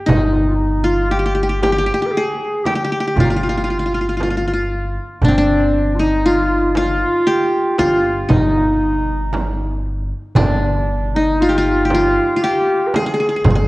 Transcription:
0.00 0.81 G4 medium
0.06 1.89 G1 medium
0.06 1.50 D#4 medium
0.06 0.17 D#4 medium
0.06 darbuka dum medium
0.06 frame drum medium
0.16 0.24 F4 medium
0.22 0.32 D#4 medium
0.31 0.39 F4 medium
0.37 0.50 D#4 medium
0.48 0.56 F4 medium
0.55 0.86 D#4 medium
0.84 2.18 F4 medium
0.84 1.09 F4 medium
1.10 1.58 G4 medium
1.10 1.19 G4 medium
1.19 1.25 G4 medium
1.26 1.34 G4 medium
1.35 1.42 G4 medium
1.43 1.49 G4 medium
1.49 1.62 G4 medium
1.61 2.08 G4 medium
1.61 1.72 G4 medium
1.61 darbuka tek medium
1.61 frame drum medium
1.72 1.78 G4 medium
1.78 1.86 G4 medium
1.86 1.94 G4 medium
1.94 2.02 G4 medium
2.02 2.23 G4 medium
2.06 2.13 B4 medium
2.11 2.65 G#4 medium
2.17 2.72 G#4 medium
2.64 3.18 G4 medium
2.64 2.75 G4 medium
2.64 darbuka tek medium
2.64 frame drum medium
2.75 2.84 G4 medium
2.84 2.91 G4 medium
2.92 3.00 G4 medium
3.00 3.07 G4 medium
3.07 4.33 G4 medium
3.16 4.96 G1 medium
3.16 3.25 F4 medium
3.16 3.30 F4 medium
3.16 frame drum medium
3.16 darbuka dum medium
3.24 3.34 D#4 medium
3.30 3.36 F4 medium
3.30 4.71 F4 medium
3.36 3.43 F4 medium
3.43 3.49 F4 soft
3.49 3.57 F4 medium
3.57 3.64 F4 soft
3.64 3.70 F4 medium
3.70 3.79 F4 soft
3.70 darbuka ka soft
3.79 3.85 F4 soft
3.86 3.94 F4 soft
3.94 4.00 F4 soft
4.01 4.08 F4 soft
4.09 4.16 F4 soft
4.17 4.22 F4 soft
4.17 darbuka tek medium
4.17 frame drum medium
4.23 4.30 F4 medium
4.30 4.37 F4 soft
4.37 4.47 F4 medium
4.48 4.53 F4 medium
4.54 5.88 F4 medium
5.21 7.02 G1 medium
5.21 5.35 D4 medium
5.21 5.37 D4 medium
5.21 frame drum medium
5.21 darbuka dum medium
5.28 6.88 C4 medium
5.35 5.97 D4 medium
5.35 6.05 D4 medium
5.95 6.02 F4 medium
5.99 7.44 D#4 medium
5.99 6.27 D#4 medium
6.26 6.76 F4 medium
6.26 6.77 F4 medium
6.51 darbuka ka soft
6.75 7.75 F4 medium
6.75 7.79 F4 medium
6.75 darbuka tek medium
6.75 frame drum medium
7.27 8.52 G4 medium
7.78 8.24 G1 medium
7.78 8.26 F4 medium
7.78 9.14 F4 medium
7.78 darbuka tek medium
7.78 frame drum medium
8.26 9.80 D#4 medium
8.26 8.33 F4 soft
8.30 10.11 G1 medium
8.30 9.85 D#4 medium
8.30 frame drum medium
8.30 darbuka dum medium
8.82 darbuka ka soft
9.33 darbuka tek medium
9.33 frame drum medium
10.35 12.17 G1 loud
10.35 11.22 D4 medium
10.35 11.16 D4 medium
10.35 darbuka dum medium
10.35 frame drum loud
11.14 11.41 D#4 medium
11.14 12.60 D#4 medium
11.40 11.53 F4 medium
11.40 11.57 F4 medium
11.49 11.85 G4 medium
11.54 11.88 F4 medium
11.58 11.94 F4 medium
11.65 darbuka ka soft
11.85 12.43 G4 medium
11.90 12.43 F4 medium
11.90 darbuka tek medium
11.90 frame drum medium
11.95 12.36 F4 medium
12.36 13.68 F4 medium
12.42 12.88 G4 medium
12.42 13.01 G4 medium
12.87 12.95 B4 medium
12.94 13.68 G#4 medium
12.94 13.06 G#4 medium
12.94 darbuka tek medium
12.94 frame drum medium
13.06 13.13 G#4 medium
13.13 13.19 G#4 medium
13.20 13.28 G#4 medium
13.29 13.36 G#4 medium
13.36 13.44 G#4 medium
13.44 13.68 G1 medium
13.44 13.50 G#4 medium
13.44 frame drum medium
13.44 darbuka dum medium
13.50 13.55 G#4 medium
13.55 13.68 G#4 medium

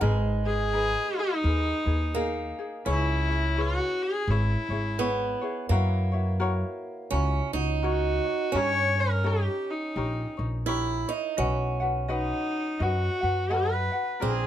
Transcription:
0.01 0.94 G#1 medium
0.01 2.10 G#3 medium
0.01 0.44 D#4 medium
0.01 0.44 G#4 medium
0.01 0.43 A#4 medium
0.01 0.43 B4 medium
0.44 0.72 D#4 soft
0.44 0.73 G#4 soft
0.44 1.20 G#4 loud
0.44 0.73 B4 soft
0.73 1.43 D#4 medium
0.73 1.45 G#4 medium
0.73 1.43 A#4 medium
0.73 1.46 B4 medium
1.19 2.59 D#4 loud
1.44 1.71 D#2 loud
1.44 1.86 D#4 medium
1.44 1.86 G#4 medium
1.44 1.85 A#4 medium
1.44 1.84 B4 medium
1.85 2.51 D#2 medium
1.85 2.14 D#4 soft
1.85 2.15 G#4 soft
1.85 2.14 B4 soft
2.15 2.88 A#3 medium
2.15 2.57 D#4 medium
2.15 2.58 G#4 medium
2.15 2.57 A#4 medium
2.59 2.86 D#4 soft
2.59 2.85 G#4 soft
2.85 3.78 C#2 medium
2.85 5.05 C#4 medium
2.85 3.28 E4 medium
2.85 3.28 G#4 medium
2.85 3.28 B4 medium
2.85 3.28 C#5 medium
2.90 3.62 E4 loud
3.29 3.57 E4 soft
3.29 3.56 G#4 soft
3.29 3.57 C#5 soft
3.57 4.28 E4 medium
3.57 4.04 F#4 medium
3.57 4.28 G#4 medium
3.57 4.27 B4 medium
3.57 4.30 C#5 medium
4.02 4.32 G#4 loud
4.27 4.55 G#1 loud
4.27 4.70 E4 medium
4.27 5.42 E4 medium
4.27 4.70 G#4 medium
4.27 4.70 B4 medium
4.27 4.69 C#5 medium
4.69 5.34 G#1 medium
4.69 4.98 E4 soft
4.69 4.98 G#4 soft
4.69 4.99 C#5 soft
4.98 5.69 B3 medium
4.98 5.41 E4 medium
4.98 5.41 G#4 medium
4.98 5.41 B4 medium
4.98 5.40 C#5 medium
5.41 5.70 E4 soft
5.41 5.71 G#4 soft
5.41 5.70 C#5 medium
5.69 6.62 F#2 medium
5.69 7.16 A#3 medium
5.69 6.12 E4 medium
5.69 6.12 F#4 medium
5.69 6.11 A#4 medium
5.69 6.11 C#5 medium
6.12 6.39 E4 soft
6.12 6.38 F#4 soft
6.12 6.39 C#5 medium
6.40 7.11 E4 medium
6.40 7.11 F#4 medium
6.40 7.11 A#4 medium
6.40 7.13 C#5 medium
7.10 7.39 C#2 medium
7.10 7.53 C#4 loud
7.10 7.54 E4 medium
7.10 7.53 F#4 medium
7.10 7.53 A#4 medium
7.10 7.52 C#5 medium
7.53 8.18 C#2 medium
7.53 8.52 D#4 medium
7.53 7.82 F#4 soft
7.53 7.82 C#5 medium
7.83 8.25 F#4 medium
7.83 8.59 F#4 medium
7.83 8.25 A#4 medium
7.83 8.23 C#5 medium
8.24 8.54 F#4 soft
8.24 8.53 C#5 soft
8.52 9.46 G2 loud
8.52 10.72 C#4 medium
8.52 8.96 D#4 medium
8.52 8.96 G4 medium
8.52 8.95 A#4 medium
8.52 8.94 C#5 medium
8.58 9.02 C#5 loud
8.96 9.23 D#4 soft
8.96 9.23 A#4 soft
8.96 9.24 C#5 soft
9.00 9.28 A#4 medium
9.23 9.96 D#4 medium
9.23 9.95 G4 medium
9.23 9.72 G4 medium
9.23 9.95 A#4 medium
9.23 9.96 C#5 medium
9.70 10.39 D#4 medium
9.96 10.23 A#1 medium
9.96 10.38 D#4 medium
9.96 10.38 G4 medium
9.96 10.37 A#4 medium
9.96 10.36 C#5 medium
10.37 11.03 A#1 medium
10.37 10.67 D#4 soft
10.37 10.67 A#4 soft
10.37 10.66 C#5 medium
10.66 11.10 E4 medium
10.66 11.07 G4 medium
10.66 11.08 A#4 medium
10.66 11.07 C#5 medium
11.08 11.35 D#4 medium
11.08 11.37 D#4 soft
11.08 11.38 A#4 soft
11.08 11.37 C#5 medium
11.37 12.30 B1 medium
11.37 14.30 C#4 medium
11.37 11.80 F#4 medium
11.37 11.80 B4 medium
11.37 11.79 D#5 medium
11.37 11.79 F#5 medium
11.80 12.08 F#4 soft
11.80 12.08 B4 soft
11.80 12.09 F#5 medium
12.08 12.85 D#4 medium
12.08 12.79 F#4 medium
12.08 12.79 B4 medium
12.08 12.78 D#5 medium
12.08 12.80 F#5 medium
12.79 13.07 F#2 medium
12.79 13.22 F#4 medium
12.79 13.57 F#4 medium
12.79 13.22 B4 medium
12.79 13.22 D#5 medium
12.79 13.20 F#5 medium
13.21 13.88 F#2 medium
13.21 13.49 F#4 soft
13.21 13.49 B4 soft
13.21 13.49 F#5 medium
13.50 13.93 F#4 medium
13.50 13.92 B4 medium
13.50 13.92 D#5 medium
13.50 13.91 F#5 medium
13.56 14.10 B4 medium
13.92 14.20 F#4 soft
13.92 14.21 B4 soft
13.92 14.21 F#5 soft
14.20 14.47 A#1 medium
14.20 14.47 C4 medium
14.20 14.47 F4 medium
14.20 14.47 G#4 medium
14.20 14.47 A#4 medium
14.20 14.47 D5 medium
14.27 14.47 G#4 medium

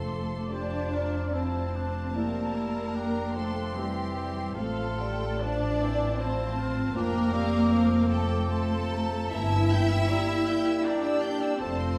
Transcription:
0.00 4.53 F1 soft
0.00 0.90 F2 soft
0.00 0.48 F3 soft
0.00 0.47 A3 soft
0.00 0.48 A3 soft
0.00 0.47 A4 medium
0.00 0.47 C6 soft
0.07 0.52 D6 soft
0.50 1.32 F3 soft
0.50 1.33 D4 soft
0.50 1.34 D4 medium
0.50 0.95 G4 soft
0.50 1.33 D5 medium
0.50 1.32 A5 soft
0.50 0.93 C6 soft
0.93 1.35 F4 soft
0.93 1.34 A#5 soft
1.33 2.14 F3 soft
1.33 2.15 C4 soft
1.33 2.16 C4 soft
1.33 1.77 E4 soft
1.33 2.16 C5 soft
1.33 2.92 A5 soft
1.33 1.73 A5 soft
1.74 2.15 D4 soft
1.74 2.92 A5 soft
2.14 2.94 G3 soft
2.14 3.33 A#3 soft
2.14 3.33 A#3 medium
2.14 2.44 C4 soft
2.14 2.57 C4 soft
2.14 2.44 E4 soft
2.14 3.33 A#4 medium
2.56 2.97 E4 soft
2.95 3.38 G3 soft
2.95 3.77 D4 soft
2.95 4.57 G5 soft
2.95 3.35 A#5 soft
3.35 3.76 F3 soft
3.35 3.76 A3 soft
3.35 3.76 A3 medium
3.35 3.77 A4 medium
3.35 4.54 C6 soft
3.76 4.16 E3 soft
3.76 4.55 G3 medium
3.76 4.57 G3 soft
3.76 4.54 C4 soft
3.76 4.57 G4 medium
4.17 4.60 E3 soft
4.55 6.92 A1 medium
4.55 5.00 F3 soft
4.55 5.42 A3 medium
4.55 5.40 A3 medium
4.55 4.88 C4 soft
4.55 5.42 F4 medium
4.55 4.88 F4 soft
4.55 5.40 A4 medium
4.55 4.98 F5 soft
4.55 5.40 C6 soft
4.99 5.44 G3 soft
4.99 5.42 G5 soft
5.40 5.84 F3 medium
5.40 5.83 D4 medium
5.40 6.18 D4 medium
5.40 6.20 D4 medium
5.40 6.20 D5 medium
5.40 6.63 A5 soft
5.40 6.18 A5 soft
5.82 6.22 E3 medium
5.82 6.22 C4 soft
6.19 6.70 F3 soft
6.19 6.96 C4 medium
6.19 6.60 E4 medium
6.19 6.96 C5 medium
6.19 6.95 A5 soft
6.59 6.95 F4 medium
6.95 9.33 F1 medium
6.95 7.34 F3 medium
6.95 8.10 A#3 medium
6.95 8.11 A#3 medium
6.95 7.23 C4 medium
6.95 7.35 D4 medium
6.95 7.23 F4 medium
6.95 8.09 A#4 medium
6.95 7.34 G5 medium
6.95 8.46 D6 medium
7.33 7.74 G3 medium
7.33 9.83 C4 medium
7.33 7.71 F5 medium
7.72 9.32 F3 medium
7.72 8.10 F5 medium
8.09 8.48 A3 medium
8.09 8.48 A4 medium
8.09 8.50 G5 medium
8.49 9.31 A3 medium
8.49 9.31 A4 medium
8.49 9.33 A5 medium
8.49 8.90 C6 medium
8.90 9.32 A#5 medium
9.31 9.98 G1 medium
9.31 10.11 E3 medium
9.31 11.57 A#3 medium
9.31 11.57 E4 medium
9.31 10.86 E4 medium
9.31 10.83 E4 medium
9.31 10.86 E5 loud
9.31 9.70 A5 medium
9.31 9.51 A#5 medium
9.52 9.72 E6 medium
9.70 10.07 G5 medium
9.70 9.91 G6 medium
9.91 10.10 E6 soft
10.08 10.47 G3 medium
10.08 10.86 E4 medium
10.08 11.58 G5 medium
10.08 10.29 A#5 soft
10.29 10.48 E6 medium
10.47 11.59 G3 medium
10.47 10.67 G6 medium
10.67 10.86 E6 soft
10.85 11.61 D4 medium
10.85 11.62 G4 medium
10.85 11.60 D5 medium
10.85 11.05 A#5 medium
11.05 11.24 E6 medium
11.23 11.42 G6 medium
11.41 11.61 E6 soft
11.59 11.98 F1 medium
11.59 11.98 F3 medium
11.59 11.98 A3 medium
11.59 11.98 C4 medium
11.59 11.98 F4 medium
11.59 11.98 A4 medium
11.59 11.98 C5 medium
11.59 11.98 A5 medium
11.59 11.78 A5 medium
11.79 11.98 C6 soft

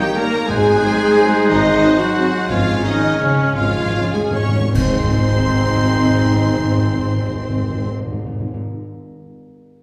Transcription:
0.00 0.17 G3 loud
0.00 0.51 A#3 medium
0.00 0.45 D#4 medium
0.00 0.17 G4 loud
0.00 0.45 C#5 loud
0.00 0.17 G5 loud
0.00 0.24 G6 medium
0.17 0.30 G3 medium
0.17 0.49 A#3 loud
0.17 0.29 A#3 medium
0.17 0.49 A#4 loud
0.17 0.50 A#4 loud
0.17 0.50 A#5 loud
0.49 0.77 G#1 medium
0.49 0.96 G#2 loud
0.49 1.47 G#3 loud
0.49 2.49 G#3 loud
0.49 2.34 D#4 medium
0.49 1.47 G#4 loud
0.49 1.48 G#4 loud
0.49 2.47 C5 loud
0.49 1.49 G#5 loud
0.49 2.46 F#6 medium
0.83 0.96 F#3 medium
0.83 0.96 C4 medium
1.19 1.30 F#3 medium
1.19 1.30 C4 medium
1.49 1.77 G#1 loud
1.49 2.00 D#3 loud
1.49 2.00 D#4 loud
1.49 1.99 D#5 loud
1.82 1.95 F#3 medium
1.82 1.95 C4 medium
1.99 2.49 F#3 loud
1.99 2.35 F#4 medium
1.99 2.50 F#4 loud
1.99 2.50 F#5 loud
2.16 2.29 F#3 medium
2.16 2.29 C4 medium
2.49 2.78 G#1 loud
2.49 2.56 G#2 soft
2.49 2.84 F3 loud
2.49 4.51 G#3 medium
2.49 4.52 C#4 loud
2.49 2.83 F4 loud
2.49 2.84 F4 loud
2.49 4.52 C#5 loud
2.49 2.84 F5 loud
2.49 4.56 F6 medium
2.64 2.71 G#2 soft
2.72 2.78 G#2 soft
2.83 3.20 D#3 loud
2.83 2.98 F3 medium
2.83 2.98 C#4 medium
2.83 3.20 D#4 loud
2.83 3.21 D#4 loud
2.83 3.20 D#4 loud
2.83 3.21 D#5 loud
2.88 2.95 G#2 medium
2.96 3.03 G#2 medium
3.04 3.12 G#2 medium
3.13 3.20 G#2 medium
3.20 3.28 G#2 medium
3.20 3.56 C#3 medium
3.20 3.34 F3 medium
3.20 3.56 C#4 loud
3.20 3.56 C#4 medium
3.20 3.35 C#4 medium
3.20 3.57 C#5 loud
3.30 3.36 G#2 medium
3.38 3.44 G#2 medium
3.45 3.52 G#2 medium
3.53 3.59 G#2 medium
3.53 4.14 F4 loud
3.53 4.13 F4 loud
3.57 3.88 G#1 medium
3.57 3.67 G#2 medium
3.57 4.13 F3 medium
3.57 4.14 F5 loud
3.69 3.76 G#2 medium
3.77 3.85 G#2 medium
3.86 3.93 G#2 medium
3.94 4.02 G#2 medium
3.94 4.09 F3 medium
3.94 4.09 C#4 medium
4.04 4.11 G#2 loud
4.12 4.20 G#2 medium
4.12 4.22 G#3 medium
4.12 4.34 G#4 medium
4.12 4.35 G#4 medium
4.12 4.35 G#4 loud
4.12 4.35 G#5 medium
4.21 4.29 G#2 loud
4.30 4.38 G#2 loud
4.30 4.75 C#5 medium
4.35 4.50 F3 medium
4.35 4.74 C#4 medium
4.35 4.50 C#4 medium
4.35 4.74 C#5 medium
4.35 4.75 C#5 medium
4.35 4.75 C#6 loud
4.39 4.47 G#2 loud
4.49 4.57 G#2 loud
4.59 4.67 G#2 loud
4.74 7.90 G#1 medium
4.74 4.82 G#2 medium
4.74 7.90 D#3 medium
4.74 7.90 G#3 medium
4.74 7.89 C4 medium
4.74 7.89 C4 loud
4.74 7.90 C4 medium
4.74 7.90 D#4 medium
4.74 7.90 C5 loud
4.74 7.90 C5 medium
4.74 7.90 C6 loud
4.74 7.90 C6 medium
4.74 concert bass drum medium
4.74 crash medium
4.83 4.90 G#2 medium
4.90 4.97 G#2 loud
4.97 5.04 G#2 medium
5.04 5.11 G#2 loud
5.11 5.17 G#2 medium
5.17 5.24 G#2 medium
5.25 5.32 G#2 medium
5.32 5.39 G#2 medium
5.39 5.46 G#2 medium
5.46 5.53 G#2 medium
5.53 5.60 G#2 medium
5.60 5.67 G#2 medium
5.68 5.74 G#2 medium
5.74 5.81 G#2 loud
5.82 5.89 G#2 medium
5.89 5.95 G#2 medium
5.95 6.02 G#2 medium
6.03 6.10 G#2 loud
6.10 6.17 G#2 medium
6.17 6.24 G#2 medium
6.24 6.31 G#2 medium
6.31 6.37 G#2 loud
6.37 6.44 G#2 medium
6.44 6.51 G#2 medium
6.51 6.58 G#2 medium
6.58 6.64 G#2 medium
6.64 6.71 G#2 medium
6.71 6.78 G#2 medium
6.78 6.85 G#2 medium
6.85 6.92 G#2 medium
6.93 6.99 G#2 medium
6.99 7.06 G#2 medium
7.06 7.13 G#2 medium
7.14 7.21 G#2 medium
7.21 7.28 G#2 medium
7.28 7.35 G#2 medium
7.35 7.42 G#2 medium
7.42 7.49 G#2 medium
7.49 7.56 G#2 medium
7.56 7.63 G#2 medium
7.63 7.70 G#2 medium
7.70 7.77 G#2 loud
7.77 7.83 G#2 medium
7.84 7.91 G#2 medium
7.91 7.98 G#2 medium
7.98 8.05 G#2 loud
8.05 8.12 G#2 medium
8.12 8.19 G#2 loud
8.19 8.26 G#2 medium
8.26 8.33 G#2 medium
8.33 8.40 G#2 medium
8.40 8.47 G#2 medium
8.47 8.54 G#2 medium
8.54 8.61 G#2 medium

